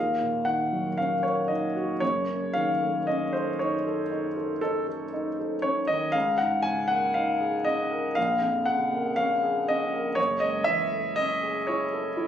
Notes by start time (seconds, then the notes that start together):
Already playing: D#2 F5
0.20 A#2
0.45 D#3 F#5
0.72 F#3
0.98 C#4 F5
1.23 A#4 C#5
1.48 D#4 D#5
1.76 F#4
2.00 F#1 F#2 C#5
2.28 C#3
2.54 D#3 F5
2.82 A3
3.07 C#4 D#5
3.33 A4 C5
3.59 D#4 C#5
3.87 A4
4.11 D#4
4.37 A4
4.61 D#4 A4
4.88 A4
5.13 D#4
5.39 A4
5.62 C#4 C#5
5.87 D#3 D#5
6.12 C#2 F5
6.38 G#2 F#5
6.62 C#3 G#5
6.88 A#3 F#5
7.14 D#4 F5
7.40 G#4
7.65 C#4 D#5
7.91 A#4
8.15 A#1 F5
8.41 F2
8.66 C#3 F#5
8.92 A#3
9.16 C#4 F5
9.43 G#4
9.68 C#4 D#5
9.94 A#4
10.15 F#1 C#5
10.40 C#2 D#5
10.64 E3 E5
10.92 A3
11.16 C#4 D#5
11.43 G#4
11.67 E4 C#5
11.93 A4
12.17 E4